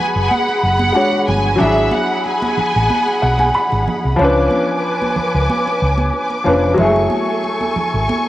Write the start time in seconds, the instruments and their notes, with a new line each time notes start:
Already playing: grand piano G#3 D4 F#4 B4, string section G#4 F#5 B5
0.00 violin section G#5
0.15 fingered electric bass F#1
0.31 violin section F#5, muted conga, high conga
0.49 muted conga
0.63 fingered electric bass F#1, violin section F#5
0.79 high conga
0.92 grand piano G#3 D4 F#4, muted conga
0.97 grand piano C#5
1.13 muted conga
1.28 fingered electric bass G1, violin section G#5, high conga, low conga
1.56 grand piano F#3 D4
1.60 fingered electric bass G#1, grand piano E4 G#4, string section G#4 F#5 B5, violin section E5, muted conga, low conga
1.78 muted conga
1.91 violin section F#5, high conga
2.26 violin section G#5, muted conga
2.42 muted conga, high conga
2.57 muted fingered electric bass stroke, low conga
2.76 fingered electric bass A1
2.90 muted conga, high conga
3.08 muted conga
3.22 fingered electric bass B1, grand piano F#5
3.39 grand piano G#5, high conga
3.54 grand piano B5, muted conga
3.72 fingered electric bass G#1, muted conga
3.88 high conga, low conga
4.05 fingered electric bass C2
4.16 fingered electric bass C#2, grand piano F3 C#4, low conga
4.21 grand piano D4 B4, string section B4 G#5 D6
4.51 high conga
5.02 high conga
5.16 muted fingered electric bass stroke, low conga
5.34 fingered electric bass C#2
5.50 muted conga, high conga
5.67 muted conga
5.82 fingered electric bass C#2
5.98 high conga
6.13 muted conga
6.30 muted conga
6.44 fingered electric bass F1, grand piano F3 C#4 D4, high conga, low conga
6.48 grand piano B4
6.74 grand piano F#3 G#3, muted conga, low conga
6.79 fingered electric bass F#1, grand piano E4 G#4, string section A4 G#5 C#6
6.84 grand piano A3
6.96 muted conga
7.10 high conga
7.44 muted conga
7.61 high conga
7.76 muted fingered electric bass stroke, low conga
7.94 fingered electric bass G#1
8.09 muted conga, high conga